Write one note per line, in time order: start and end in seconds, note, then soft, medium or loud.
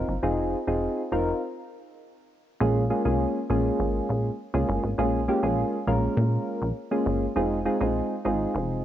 0.00 0.13 C4 medium
0.00 0.13 D#4 medium
0.00 0.13 F4 medium
0.00 0.13 A#4 medium
0.08 0.19 G1 medium
0.23 0.55 F1 loud
0.23 0.57 C4 medium
0.23 0.57 D#4 medium
0.23 0.57 F4 medium
0.23 0.57 G#4 loud
0.67 0.89 F1 medium
0.67 1.02 C4 medium
0.67 1.02 D#4 medium
0.67 1.02 F4 medium
0.67 1.02 G#4 medium
1.12 1.33 F1 loud
1.12 1.42 C4 medium
1.12 1.42 D#4 medium
1.12 1.42 F4 medium
1.12 1.42 A#4 medium
2.60 2.92 A#1 loud
2.60 2.83 G#3 medium
2.60 2.84 A#3 medium
2.60 2.84 C#4 medium
2.60 2.84 F4 medium
2.60 2.84 G#4 loud
2.90 3.02 G#3 medium
2.90 3.02 A#3 medium
2.90 3.02 C#4 medium
2.90 3.02 F4 medium
2.90 3.02 G#4 loud
3.05 3.26 C2 medium
3.05 3.39 G#3 medium
3.05 3.39 A#3 medium
3.05 3.40 C#4 medium
3.05 3.40 F4 medium
3.05 3.40 G#4 medium
3.50 3.71 A#1 loud
3.50 4.30 G#3 medium
3.50 4.30 A#3 medium
3.50 4.30 C#4 medium
3.50 4.30 F4 medium
3.50 4.30 G#4 medium
3.79 4.01 G#1 medium
4.09 4.30 A#1 medium
4.54 4.64 C#2 medium
4.54 4.88 G#3 medium
4.54 4.88 A#3 medium
4.54 4.88 C#4 medium
4.54 4.88 F4 medium
4.54 4.88 G#4 medium
4.69 4.79 G1 loud
4.84 4.94 G#1 medium
4.98 5.30 A#1 loud
4.98 5.21 G#3 medium
4.98 5.21 A#3 medium
4.98 5.21 C#4 medium
4.98 5.21 F4 medium
4.98 5.21 G#4 loud
5.28 5.39 G#3 medium
5.28 5.40 A#3 medium
5.28 5.40 C#4 medium
5.28 5.40 F4 medium
5.28 5.40 G4 loud
5.43 5.64 A#1 medium
5.43 5.77 G#3 medium
5.43 5.77 A#3 medium
5.43 5.77 C#4 medium
5.43 5.77 F4 medium
5.43 5.77 G#4 loud
5.87 6.08 A#1 loud
5.87 6.67 G#3 medium
5.87 6.67 A#3 medium
5.87 6.67 C#4 medium
5.87 6.68 F4 medium
5.87 6.68 A#4 loud
6.17 6.38 A#2 loud
6.62 6.72 A#1 loud
6.91 7.26 G#3 medium
6.91 7.26 A#3 medium
6.91 7.26 C#4 medium
6.91 7.26 F4 medium
6.91 7.26 G#4 medium
7.06 7.27 G1 loud
7.36 7.68 F1 loud
7.36 7.59 G#3 medium
7.36 7.59 C4 medium
7.36 7.59 D#4 medium
7.36 7.59 F4 medium
7.36 7.59 G#4 loud
7.65 7.77 G#3 medium
7.65 7.77 C4 medium
7.65 7.77 D#4 medium
7.65 7.77 F4 medium
7.65 7.77 G#4 loud
7.80 8.02 A#1 loud
7.80 8.15 G#3 medium
7.80 8.15 C4 medium
7.80 8.15 D#4 medium
7.80 8.15 F4 medium
7.80 8.15 G#4 loud
8.25 8.46 G#1 loud
8.25 8.85 G#3 medium
8.25 8.85 C4 medium
8.25 8.85 D#4 medium
8.25 8.85 F4 medium
8.25 8.85 G#4 medium
8.55 8.85 F1 loud